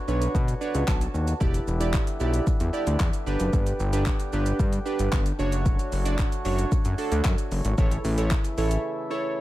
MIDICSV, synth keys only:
0, 0, Header, 1, 2, 480
1, 0, Start_track
1, 0, Tempo, 530973
1, 1274, Time_signature, 4, 2, 24, 8
1, 8505, End_track
2, 0, Start_track
2, 0, Title_t, "Synth keys"
2, 0, Program_c, 0, 88
2, 70, Note_on_c, 0, 62, 79
2, 72, Note_on_c, 0, 71, 78
2, 75, Note_on_c, 0, 73, 94
2, 292, Note_off_c, 0, 62, 0
2, 293, Note_off_c, 0, 71, 0
2, 294, Note_off_c, 0, 73, 0
2, 550, Note_on_c, 0, 62, 86
2, 552, Note_on_c, 0, 71, 75
2, 552, Note_on_c, 0, 74, 72
2, 556, Note_on_c, 0, 73, 93
2, 776, Note_off_c, 0, 74, 0
2, 793, Note_on_c, 0, 81, 76
2, 881, Note_off_c, 0, 62, 0
2, 882, Note_off_c, 0, 71, 0
2, 885, Note_off_c, 0, 73, 0
2, 1239, Note_off_c, 0, 81, 0
2, 1268, Note_on_c, 0, 64, 83
2, 1270, Note_on_c, 0, 67, 80
2, 1271, Note_on_c, 0, 74, 98
2, 1435, Note_off_c, 0, 64, 0
2, 1437, Note_off_c, 0, 67, 0
2, 1437, Note_off_c, 0, 74, 0
2, 1629, Note_on_c, 0, 64, 85
2, 1630, Note_on_c, 0, 67, 76
2, 1632, Note_on_c, 0, 74, 92
2, 1796, Note_off_c, 0, 64, 0
2, 1797, Note_off_c, 0, 67, 0
2, 1798, Note_off_c, 0, 74, 0
2, 1988, Note_on_c, 0, 64, 85
2, 1991, Note_on_c, 0, 67, 77
2, 1993, Note_on_c, 0, 74, 89
2, 2211, Note_off_c, 0, 64, 0
2, 2212, Note_off_c, 0, 67, 0
2, 2213, Note_off_c, 0, 74, 0
2, 2467, Note_on_c, 0, 64, 88
2, 2470, Note_on_c, 0, 67, 80
2, 2472, Note_on_c, 0, 74, 95
2, 2800, Note_off_c, 0, 64, 0
2, 2801, Note_off_c, 0, 67, 0
2, 2802, Note_off_c, 0, 74, 0
2, 2950, Note_on_c, 0, 62, 90
2, 2953, Note_on_c, 0, 67, 79
2, 2955, Note_on_c, 0, 71, 101
2, 3432, Note_off_c, 0, 62, 0
2, 3433, Note_off_c, 0, 67, 0
2, 3434, Note_off_c, 0, 71, 0
2, 3551, Note_on_c, 0, 62, 89
2, 3552, Note_on_c, 0, 67, 79
2, 3554, Note_on_c, 0, 71, 97
2, 3717, Note_off_c, 0, 62, 0
2, 3718, Note_off_c, 0, 67, 0
2, 3719, Note_off_c, 0, 71, 0
2, 3912, Note_on_c, 0, 62, 87
2, 3913, Note_on_c, 0, 67, 81
2, 3917, Note_on_c, 0, 71, 92
2, 4132, Note_off_c, 0, 62, 0
2, 4133, Note_off_c, 0, 67, 0
2, 4135, Note_off_c, 0, 71, 0
2, 4389, Note_on_c, 0, 62, 90
2, 4390, Note_on_c, 0, 67, 77
2, 4393, Note_on_c, 0, 71, 98
2, 4721, Note_off_c, 0, 62, 0
2, 4722, Note_off_c, 0, 67, 0
2, 4723, Note_off_c, 0, 71, 0
2, 4870, Note_on_c, 0, 62, 89
2, 4874, Note_on_c, 0, 66, 81
2, 4875, Note_on_c, 0, 73, 99
2, 5352, Note_off_c, 0, 62, 0
2, 5354, Note_off_c, 0, 66, 0
2, 5354, Note_off_c, 0, 73, 0
2, 5471, Note_on_c, 0, 62, 85
2, 5473, Note_on_c, 0, 66, 80
2, 5475, Note_on_c, 0, 74, 94
2, 5637, Note_off_c, 0, 62, 0
2, 5638, Note_off_c, 0, 66, 0
2, 5639, Note_off_c, 0, 74, 0
2, 5829, Note_on_c, 0, 62, 89
2, 5832, Note_on_c, 0, 66, 79
2, 5835, Note_on_c, 0, 73, 94
2, 6051, Note_off_c, 0, 62, 0
2, 6053, Note_off_c, 0, 66, 0
2, 6054, Note_off_c, 0, 73, 0
2, 6310, Note_on_c, 0, 62, 86
2, 6312, Note_on_c, 0, 66, 78
2, 6315, Note_on_c, 0, 69, 97
2, 6642, Note_off_c, 0, 62, 0
2, 6642, Note_off_c, 0, 66, 0
2, 6644, Note_off_c, 0, 69, 0
2, 7030, Note_on_c, 0, 64, 87
2, 7033, Note_on_c, 0, 69, 79
2, 7034, Note_on_c, 0, 73, 99
2, 7196, Note_off_c, 0, 64, 0
2, 7198, Note_off_c, 0, 69, 0
2, 7199, Note_off_c, 0, 73, 0
2, 7393, Note_on_c, 0, 64, 85
2, 7396, Note_on_c, 0, 69, 81
2, 7396, Note_on_c, 0, 73, 94
2, 7558, Note_off_c, 0, 64, 0
2, 7560, Note_off_c, 0, 69, 0
2, 7560, Note_off_c, 0, 73, 0
2, 7753, Note_on_c, 0, 64, 86
2, 7756, Note_on_c, 0, 69, 81
2, 7758, Note_on_c, 0, 73, 94
2, 7973, Note_off_c, 0, 64, 0
2, 7975, Note_off_c, 0, 69, 0
2, 7976, Note_off_c, 0, 73, 0
2, 8231, Note_on_c, 0, 64, 84
2, 8233, Note_on_c, 0, 69, 81
2, 8234, Note_on_c, 0, 73, 100
2, 8505, Note_off_c, 0, 64, 0
2, 8505, Note_off_c, 0, 69, 0
2, 8505, Note_off_c, 0, 73, 0
2, 8505, End_track
0, 0, End_of_file